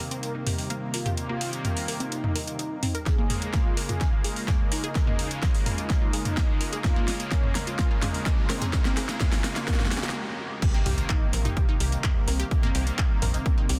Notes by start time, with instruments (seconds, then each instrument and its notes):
Already playing: analog synth pad C3 D#3 A#3, ambient pad G3 C4 D#4 A#4
0.11 synth pluck C4, analog polysynth A#4, closed hi-hat
0.23 closed hi-hat
0.35 synth pluck D#4
0.47 synth pluck G4, mid tom, open hi-hat
0.58 open hi-hat
0.70 synth pluck A#3, closed hi-hat
0.94 analog polysynth F4, synth pluck A#4, open hi-hat
1.06 synth pluck G4, closed hi-hat, mid tom
1.17 analog synth pad C3 D#3 A#3, closed hi-hat
1.29 synth pluck A#3, analog polysynth F4
1.41 synth pluck G4, open hi-hat
1.53 closed hi-hat
1.65 synth pluck A#3, closed hi-hat, mid tom
1.77 open hi-hat
1.88 synth pluck A#4, open hi-hat
2.00 synth pluck C4, analog polysynth D#4, closed hi-hat
2.12 closed hi-hat
2.24 synth pluck D#4, mid tom
2.35 synth pluck A#4, open hi-hat
2.47 analog synth pad C3 D#3 A#3, closed hi-hat
2.59 synth pluck D#4, closed hi-hat
2.83 synth pluck C4, mid tom, open hi-hat
2.95 synth pluck A#4, closed hi-hat
3.06 analog synth pad C#3 G#3 A#3, ambient pad G#3 C#4 F4, analog polysynth G#4, kick, snare, closed hi-hat, riser
3.18 synth pluck A#3
3.30 synth pluck G#4, mid tom, open hi-hat
3.42 closed hi-hat
3.54 synth pluck A#3, analog polysynth F4, kick, snare, closed hi-hat
3.77 synth pluck A#4, open hi-hat
3.89 synth pluck F4, analog polysynth G#4, closed hi-hat, mid tom
4.01 kick, snare, closed hi-hat
4.13 synth pluck F4
4.24 synth pluck G#4, open hi-hat
4.36 open hi-hat
4.48 synth pluck A#3, kick, snare, closed hi-hat, mid tom
4.72 analog polysynth D#4, synth pluck A#4, open hi-hat
4.84 synth pluck G#4, closed hi-hat
4.95 analog synth pad C#3 G#3 A#3, kick, snare, closed hi-hat
5.07 synth pluck A#3, analog polysynth D#4, mid tom
5.19 synth pluck G#4, open hi-hat
5.31 closed hi-hat
5.43 synth pluck A#3, kick, snare, closed hi-hat
5.54 open hi-hat
5.66 synth pluck A#4, mid tom, open hi-hat
5.78 analog polysynth D#4, synth pluck F4, closed hi-hat
5.90 kick, snare, closed hi-hat
6.02 synth pluck F4
6.13 analog synth pad C#3 G#3 A#3, synth pluck G#4, open hi-hat
6.25 closed hi-hat, mid tom
6.37 synth pluck A#3, kick, snare, closed hi-hat
6.61 synth pluck A#4, open hi-hat
6.73 synth pluck G#4, closed hi-hat
6.84 analog synth pad C#3 G#3 A#3, analog polysynth F4, kick, snare, closed hi-hat, mid tom
6.96 synth pluck A#3
7.08 synth pluck G#4, snare, open hi-hat
7.20 closed hi-hat
7.32 synth pluck A#3, analog polysynth C#4, kick, snare, closed hi-hat
7.43 mid tom
7.55 synth pluck A#4, snare, open hi-hat
7.67 synth pluck F4, analog polysynth F4, closed hi-hat
7.79 kick, snare, closed hi-hat
7.91 synth pluck F4
8.02 synth pluck G#4, snare, mid tom, open hi-hat
8.14 open hi-hat
8.26 synth pluck A#3, kick, snare, closed hi-hat
8.50 analog polysynth C4, synth pluck A#4, snare, open hi-hat
8.62 synth pluck G#4, closed hi-hat, mid tom
8.73 analog synth pad C#3 G#3 A#3, kick, snare, closed hi-hat
8.85 synth pluck A#3, analog polysynth C4, snare
8.97 synth pluck G#4, snare, open hi-hat
9.09 snare, closed hi-hat
9.21 synth pluck A#3, kick, snare, closed hi-hat, mid tom
9.33 snare, open hi-hat
9.44 synth pluck A#4, snare, open hi-hat
9.56 analog polysynth A#3, synth pluck F4, snare, closed hi-hat
9.68 kick, snare, closed hi-hat
9.74 snare
9.80 synth pluck F4, snare, mid tom
9.86 snare
9.91 analog synth pad C#3 G#3 A#3, synth pluck G#4, snare, open hi-hat
9.97 snare
10.03 snare, closed hi-hat
10.09 snare
10.62 analog synth pad C3 D#3 A#3, ambient pad G3 C4 D#4 A#4, analog polysynth G4, kick, closed hi-hat, crash, impact
10.74 synth pluck A#3
10.86 analog synth bass C2, synth pluck G4, mid tom, open hi-hat
10.98 closed hi-hat
11.09 synth pluck A#3, analog polysynth D#4, kick, clap, closed hi-hat
11.33 analog synth bass A#1, synth pluck A#4, open hi-hat
11.45 synth pluck D#4, analog polysynth G4, closed hi-hat, mid tom
11.57 kick, closed hi-hat
11.69 synth pluck D#4
11.80 analog synth bass C2, synth pluck G4, open hi-hat
11.92 closed hi-hat
12.04 synth pluck A#3, kick, clap, closed hi-hat, mid tom
12.28 analog synth bass C2, analog polysynth C4, synth pluck A#4, open hi-hat
12.40 synth pluck G4, closed hi-hat
12.51 analog synth pad C3 D#3 A#3, kick, closed hi-hat
12.63 synth pluck A#3, analog polysynth C4, mid tom
12.75 analog synth bass C2, synth pluck G4, open hi-hat
12.87 closed hi-hat
12.98 synth pluck A#3, kick, clap, closed hi-hat
13.22 analog synth bass A#1, synth pluck A#4, mid tom, open hi-hat
13.34 analog polysynth C4, synth pluck D#4, closed hi-hat
13.46 kick, closed hi-hat
13.58 synth pluck D#4
13.69 analog synth bass C2, synth pluck G4, open hi-hat